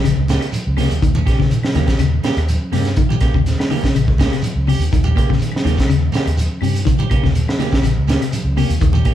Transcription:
0.04 fingered electric bass A#1, clean electric guitar C#3, closed hi-hat, claves, shekere
0.17 fingered electric bass C#2, high conga
0.28 clean electric guitar A#3 C#4 G4, snare, closed hi-hat, high conga, shekere
0.41 muted clean electric guitar stroke, closed hi-hat, claves, shekere
0.52 closed hi-hat, high conga, shekere
0.67 fingered electric bass C#2
0.77 clean electric guitar C3 A#3 C#4 G4, snare, open hi-hat, high conga, low conga, claves, shekere
0.90 fingered electric bass D#2, closed hi-hat, shekere
1.02 fingered electric bass D#2, clean electric guitar D#3, kick, closed hi-hat, high conga, shekere
1.15 clean electric guitar C#4, high conga, shekere
1.26 clean electric guitar C#4 G4, kick, snare, closed hi-hat, claves
1.39 clean electric guitar C#3, kick, snare, shekere
1.51 fingered electric bass D#3, closed hi-hat, high conga, shekere
1.63 snare, high conga, claves
1.74 fingered electric bass D#2, clean electric guitar D#3 A#3 C#4 G4, snare, closed hi-hat, high conga, low conga, shekere
1.87 clean electric guitar C#4 G4, kick, snare, closed hi-hat, shekere
1.99 fingered electric bass D#2, clean electric guitar C#3, closed hi-hat, claves, shekere
2.14 high conga
2.23 clean electric guitar A#3 C#4 G4, muted fingered electric bass stroke, snare, closed hi-hat, high conga, shekere
2.37 fingered electric bass D#2, closed hi-hat, claves, shekere
2.48 closed hi-hat, high conga, shekere
2.72 fingered electric bass G2, clean electric guitar C3 A#3 C#4 G4, snare, open hi-hat, low conga, claves, shekere
2.85 snare, closed hi-hat, shekere
2.96 clean electric guitar D#3, kick, closed hi-hat, shekere
3.09 clean electric guitar G4, muted clean electric guitar stroke, high conga, shekere
3.20 clean electric guitar A#3 C#4 G4, muted fingered electric bass stroke, kick, snare, closed hi-hat, claves
3.34 fingered electric bass D#2, clean electric guitar C#3, kick, shekere
3.45 snare, closed hi-hat, high conga, shekere
3.59 snare, high conga, claves
3.70 clean electric guitar D#3 A#3 C#4 G4, open hi-hat, low conga, shekere
3.84 kick, snare, shekere
3.95 fingered electric bass A#1, clean electric guitar C#3, closed hi-hat, claves, shekere
4.08 fingered electric bass C#2, kick
4.18 clean electric guitar A#3 C#4 G4, kick, snare, closed hi-hat, high conga, shekere
4.32 clean electric guitar C3, snare, closed hi-hat, claves, shekere
4.42 closed hi-hat, high conga, shekere
4.55 fingered electric bass C#2
4.67 clean electric guitar C3 C#4 G4, muted clean electric guitar stroke, open hi-hat, low conga, claves, shekere
4.79 fingered electric bass D#2, closed hi-hat, shekere
4.91 fingered electric bass D#2, clean electric guitar D#3, kick, closed hi-hat, high conga, shekere
5.04 clean electric guitar C#4 G4, high conga, shekere
5.15 clean electric guitar A#3 C#4 G4, kick, closed hi-hat, low conga, claves
5.28 clean electric guitar C#3, kick, shekere
5.33 snare
5.39 fingered electric bass D#3, closed hi-hat, high conga, shekere
5.52 high conga, claves
5.56 snare
5.64 fingered electric bass D#2, clean electric guitar D#3 A#3 C#4 G4, closed hi-hat, high conga, low conga, shekere
5.77 clean electric guitar C#4, kick, snare, closed hi-hat, shekere
5.88 fingered electric bass D#2, clean electric guitar C#3, closed hi-hat, claves, shekere
6.01 high conga
6.12 clean electric guitar A#3 C#4 G4, muted fingered electric bass stroke, snare, closed hi-hat, high conga, shekere
6.26 fingered electric bass D#2, muted clean electric guitar stroke, closed hi-hat, claves, shekere
6.37 closed hi-hat, high conga, shekere
6.61 fingered electric bass G2, clean electric guitar C3 C#4 G4, open hi-hat, low conga, claves, shekere
6.74 closed hi-hat, shekere
6.85 clean electric guitar D#3, kick, closed hi-hat, high conga, low conga, shekere
6.99 clean electric guitar G4, high conga, shekere
7.10 clean electric guitar A#3 C#4 G4, muted fingered electric bass stroke, kick, closed hi-hat, low conga, claves
7.23 fingered electric bass D#2, clean electric guitar C#3, kick, snare, shekere
7.35 closed hi-hat, high conga, shekere
7.47 snare, high conga, claves
7.59 clean electric guitar D#3 A#3 C#4 G4, snare, closed hi-hat, low conga, shekere
7.72 clean electric guitar C#4 G4, kick, snare, shekere
7.83 fingered electric bass A#1, clean electric guitar C#3, closed hi-hat, claves, shekere
7.97 fingered electric bass C#2, high conga
8.07 clean electric guitar A#3 C#4 G4, snare, closed hi-hat, high conga, shekere
8.21 clean electric guitar C3, closed hi-hat, claves, shekere
8.33 closed hi-hat, high conga, shekere
8.44 fingered electric bass C#2
8.56 clean electric guitar C3 A#3 C#4 G4, open hi-hat, low conga, claves, shekere
8.69 fingered electric bass D#2, closed hi-hat, shekere
8.80 fingered electric bass D#2, clean electric guitar D#3, kick, closed hi-hat, high conga, shekere
8.93 clean electric guitar C#4 G4, high conga, shekere
9.05 clean electric guitar A#3 C#4 G4, kick, closed hi-hat, low conga, claves

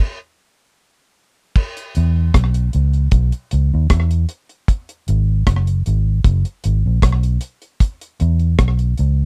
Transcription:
0.00 crash
1.56 kick, crash
1.77 closed hi-hat
1.95 fingered electric bass E2, closed hi-hat
2.34 fingered electric bass B1, kick, cross-stick, closed hi-hat
2.54 closed hi-hat
2.73 fingered electric bass C#2, closed hi-hat
2.93 closed hi-hat
3.11 fingered electric bass B1, kick, closed hi-hat
3.32 closed hi-hat
3.51 fingered electric bass C#2, closed hi-hat
3.74 fingered electric bass D#2
3.90 fingered electric bass E2, kick, cross-stick, closed hi-hat
4.11 closed hi-hat
4.29 closed hi-hat
4.49 closed hi-hat
4.68 kick, closed hi-hat
4.89 closed hi-hat
5.08 fingered electric bass G#1, closed hi-hat
5.47 fingered electric bass F#1, kick, cross-stick, closed hi-hat
5.67 closed hi-hat
5.86 fingered electric bass G#1, closed hi-hat
6.24 fingered electric bass F#1, kick, closed hi-hat
6.45 closed hi-hat
6.64 fingered electric bass G#1, closed hi-hat
6.86 fingered electric bass A#1
7.02 fingered electric bass B1, kick, cross-stick, closed hi-hat
7.23 closed hi-hat
7.41 closed hi-hat
7.62 closed hi-hat
7.80 kick, closed hi-hat
8.01 closed hi-hat
8.20 fingered electric bass E2, closed hi-hat
8.39 closed hi-hat
8.59 fingered electric bass B1, kick, cross-stick, closed hi-hat
8.79 closed hi-hat
8.98 fingered electric bass C#2, closed hi-hat

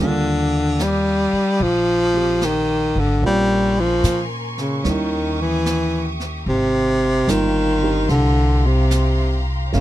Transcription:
Already playing: upright bass D#2, upright piano G3 A#3 D5, string section G4 F5 D6 D#6
0.00 baritone saxophone D3, upright piano D4 F4
0.79 baritone saxophone G3, snare, hi-hat pedal
1.33 muted upright bass stroke
1.60 upright bass A#1, baritone saxophone F3, brush sweep
2.13 upright piano C4 G4
2.42 baritone saxophone D#3, snare, hi-hat pedal
2.95 upright bass G#1, baritone saxophone D3
3.22 upright bass A#1, upright piano A#3 C4 C#4 F4, string section A#4 G#5 C6 C#6, brush sweep
3.26 baritone saxophone G3
3.80 baritone saxophone F3
4.04 upright bass A#2, snare, hi-hat pedal
4.58 baritone saxophone C#3, snare
4.82 upright bass D#2, upright piano G3 A#3 C#4 E4, string section G4 E5 D#6, brush sweep, snare
4.87 baritone saxophone D#3
5.41 baritone saxophone E3
5.66 snare, hi-hat pedal
6.20 snare
6.46 upright bass G#1, baritone saxophone C3, string section F5 A#5 C6, brush sweep
7.28 upright bass G1, baritone saxophone D#3, upright piano G3 A#3 C4 F4, snare, hi-hat pedal
7.81 upright piano C4 D4 G4
8.09 upright bass C2, baritone saxophone D3, brush sweep, snare
8.67 baritone saxophone C3
8.91 snare, hi-hat pedal
9.72 upright bass G1, baritone saxophone C#3, upright piano A3 A#3 C#4 F5, string section C#5, brush sweep, snare

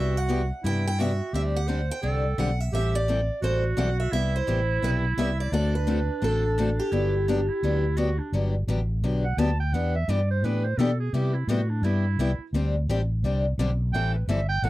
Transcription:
Already playing: fretless electric bass C2, steel-string acoustic guitar C3 G3 B3 E4 G4 E5, clarinet F#4
0.17 steel-string acoustic guitar F#5
0.29 steel-string acoustic guitar C3 G3 B3 E4 G4
0.63 fretless electric bass G2, steel-string acoustic guitar C3 G3 B3 E4 G4 G5, clarinet E4
0.87 steel-string acoustic guitar G5
0.99 steel-string acoustic guitar C3 G3 B3 E4 G4 E5, clarinet F#4
1.33 fretless electric bass D2, steel-string acoustic guitar D3 G3 C4 D4 G4 E5, clarinet G4
1.56 steel-string acoustic guitar F#5
1.68 steel-string acoustic guitar D3 G3 C4 D4 G4, clarinet C5
1.91 steel-string acoustic guitar G5
2.02 fretless electric bass C2, steel-string acoustic guitar D3 G3 C4 D4 G4, clarinet A4
2.38 fretless electric bass B1, steel-string acoustic guitar D3 G3 C4 D4 G4 F#5
2.60 steel-string acoustic guitar E5
2.72 fretless electric bass A1, steel-string acoustic guitar E3 G3 C4 E4 A4 E5, clarinet G4
2.95 steel-string acoustic guitar D5
3.08 steel-string acoustic guitar E3 G3 C4 E4 A4
3.42 fretless electric bass A1, steel-string acoustic guitar E3 G3 C4 E4 A4 C5, clarinet F#4
3.77 fretless electric bass B1, steel-string acoustic guitar E3 G3 C4 E4 A4 F#5
4.00 steel-string acoustic guitar E5
4.11 fretless electric bass C2, steel-string acoustic guitar C3 G3 B3 E4 G4 E5, clarinet E4
4.36 steel-string acoustic guitar C5
4.47 fretless electric bass A1, steel-string acoustic guitar C3 G3 B3 E4 G4
4.82 fretless electric bass B1, steel-string acoustic guitar C3 G3 B3 E4 G4 B4
5.17 fretless electric bass C2, steel-string acoustic guitar C3 G3 B3 E4 G4 E5
5.40 steel-string acoustic guitar D5
5.52 fretless electric bass D2, steel-string acoustic guitar D3 A3 C4 F#4 A4 D5, clarinet D4
5.75 steel-string acoustic guitar B4
5.87 steel-string acoustic guitar D3 A3 C4 F#4 A4
6.22 fretless electric bass A1, steel-string acoustic guitar D3 A3 C4 F#4 A4
6.58 steel-string acoustic guitar D3 A3 C4 F#4 A4
6.79 steel-string acoustic guitar G4
6.92 fretless electric bass G1, steel-string acoustic guitar D3 F#3 B3 D4 G4, clarinet E4
7.28 steel-string acoustic guitar D3 F#3 B3 D4 G4, clarinet D4
7.48 clarinet E4
7.63 fretless electric bass D2, steel-string acoustic guitar D3 F#3 B3 D4 G4
7.97 steel-string acoustic guitar D3 F#3 B3 D4 G4, clarinet F#4
8.18 clarinet D4
8.32 fretless electric bass G1, steel-string acoustic guitar D3 F#3 B3 D4 G4
8.67 fretless electric bass A1, steel-string acoustic guitar D3 F#3 B3 D4 G4
9.02 fretless electric bass B1, steel-string acoustic guitar D3 F#3 B3 D4 G4
9.24 clarinet F#5
9.37 fretless electric bass D2, steel-string acoustic guitar D3 F#3 B3 D4 G4, clarinet A5
9.60 clarinet G5
9.73 fretless electric bass E2, steel-string acoustic guitar E3 B3 D4 G4, clarinet F#5
9.95 clarinet E5
10.08 fretless electric bass G2, steel-string acoustic guitar E3 B3 D4 G4, clarinet D5
10.31 clarinet C5
10.43 fretless electric bass A2, steel-string acoustic guitar E3 B3 D4 G4, clarinet B4
10.65 clarinet C5
10.78 fretless electric bass B2, steel-string acoustic guitar E3 B3 D4 G4, clarinet A4
11.00 clarinet G#4
11.13 fretless electric bass C3, steel-string acoustic guitar C3 G3 B3 E4 G4, clarinet G4
11.34 clarinet E4
11.47 fretless electric bass A2, steel-string acoustic guitar C3 G3 B3 E4 G4, clarinet F#4
11.70 clarinet D4
11.82 fretless electric bass G2, steel-string acoustic guitar C3 G3 B3 E4 G4, clarinet E4
12.17 fretless electric bass C2, steel-string acoustic guitar C3 G3 B3 E4 G4
12.38 muted fretless electric bass stroke
12.53 fretless electric bass D2, steel-string acoustic guitar D3 G3 C4 D4 G4
12.88 fretless electric bass A1, steel-string acoustic guitar D3 G3 C4 D4 G4
13.23 fretless electric bass C2, steel-string acoustic guitar D3 G3 C4 D4 G4
13.58 fretless electric bass B1, steel-string acoustic guitar D3 G3 C4 D4 G4
13.92 fretless electric bass A1, steel-string acoustic guitar E3 G3 C4 E4 A4, clarinet G5
14.15 clarinet B4
14.27 fretless electric bass G1, steel-string acoustic guitar E3 G3 C4 E4 A4, clarinet E5
14.49 clarinet G5
14.62 fretless electric bass A1, steel-string acoustic guitar E3 G3 C4 E4 A4, clarinet F#5

